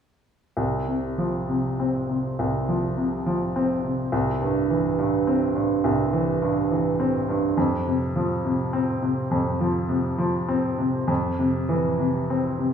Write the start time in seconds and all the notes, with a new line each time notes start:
0.57 C2
0.88 C3
1.18 F3
1.49 C3
1.80 C4
2.09 C3
2.39 C2
2.69 F3
2.97 C3
3.26 F3
3.56 C4
3.84 C3
4.12 C2
4.41 G2
4.70 E3
4.98 G2
5.27 C4
5.55 G2
5.84 C2
6.13 E3
6.42 G2
6.71 E3
7.00 C4
7.29 G2
7.57 F2
7.87 C3
8.16 F3
8.45 C3
8.73 C4
9.02 C3
9.31 F2
9.61 F3
9.89 C3
10.18 F3
10.48 C4
10.78 C3
11.08 F2
11.39 C3
11.69 E3
11.99 C3
12.30 C4
12.59 C3